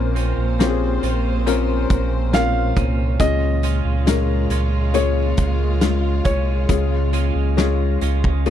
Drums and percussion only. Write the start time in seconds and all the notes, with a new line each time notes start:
0.16 closed hi-hat
0.60 snare, closed hi-hat
1.03 closed hi-hat
1.47 closed hi-hat
1.90 kick, closed hi-hat
2.34 snare, closed hi-hat
2.76 kick, closed hi-hat
3.20 kick, closed hi-hat
3.63 closed hi-hat
4.07 snare, closed hi-hat
4.50 closed hi-hat
4.94 closed hi-hat
5.37 kick, closed hi-hat
5.81 snare, closed hi-hat
6.25 kick, closed hi-hat
6.69 kick, closed hi-hat
7.13 closed hi-hat
7.58 snare, closed hi-hat
8.01 closed hi-hat
8.24 kick
8.46 closed hi-hat